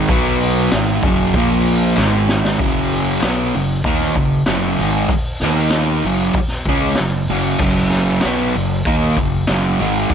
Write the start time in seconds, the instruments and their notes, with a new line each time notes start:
0.09 fretless electric bass B1, distorted electric guitar B2 F#3 B3, kick, open hi-hat
0.40 open hi-hat
0.72 fretless electric bass G#1, distorted electric guitar G#2 D#3 G#3, snare, clap, open hi-hat
1.03 fretless electric bass F#1, distorted electric guitar F#2 C#3 F#3, kick, open hi-hat
1.34 fretless electric bass A#1, distorted electric guitar A#2 F3, kick, open hi-hat
1.38 distorted electric guitar A#3
1.66 open hi-hat
1.97 fretless electric bass G#1, distorted electric guitar G#2 D#3 G#3, snare, clap
2.29 snare
2.45 snare
2.60 fretless electric bass F#1, distorted electric guitar F#2 C#3 F#3, kick, open hi-hat
2.92 open hi-hat
3.21 fretless electric bass B1, distorted electric guitar B2 F#3 B3, snare, clap, open hi-hat
3.54 fretless electric bass F#1, distorted electric guitar F#2 C#3, open hi-hat
3.84 fretless electric bass D#2, distorted electric guitar D#3 A#3 D#4, kick, open hi-hat
4.01 snare
4.15 fretless electric bass F#1, distorted electric guitar F#2 C#3, kick, open hi-hat
4.46 fretless electric bass F#1, distorted electric guitar F#2 C#3 F#3, snare, clap, open hi-hat
4.78 fretless electric bass G#1, distorted electric guitar G#2 D#3, open hi-hat
4.82 distorted electric guitar G#3
5.09 muted fretless electric bass stroke, muted distorted electric guitar stroke, kick, open hi-hat
5.40 fretless electric bass D#2, distorted electric guitar D#3, snare, open hi-hat
5.45 distorted electric guitar A#3 D#4
5.70 snare, clap, open hi-hat
6.03 fretless electric bass F#1, distorted electric guitar F#2 C#3 F#3, open hi-hat
6.33 muted fretless electric bass stroke, kick, open hi-hat
6.38 muted distorted electric guitar stroke
6.48 snare
6.64 fretless electric bass C#2, kick, open hi-hat
6.68 distorted electric guitar C#3 G#3 C#4
6.95 snare, clap, open hi-hat
7.00 fretless electric bass F#1, distorted electric guitar F#2 C#3
7.27 fretless electric bass F#1, distorted electric guitar F#2 C#3, open hi-hat
7.32 distorted electric guitar F#3
7.59 fretless electric bass F#1, distorted electric guitar F#2 C#3, kick, crash
7.63 distorted electric guitar F#3
7.90 snare, open hi-hat
8.21 fretless electric bass B1, distorted electric guitar B2 F#3 B3, snare, clap, open hi-hat
8.53 fretless electric bass F#1, distorted electric guitar F#2 C#3, open hi-hat
8.85 fretless electric bass D#2, distorted electric guitar D#3 A#3 D#4, kick, open hi-hat
9.16 fretless electric bass F#1, distorted electric guitar F#2 C#3, kick, open hi-hat
9.47 fretless electric bass F#1, distorted electric guitar F#2 C#3 F#3, snare, clap, open hi-hat
9.79 fretless electric bass G#1, distorted electric guitar G#2 D#3 G#3, open hi-hat
10.10 kick, open hi-hat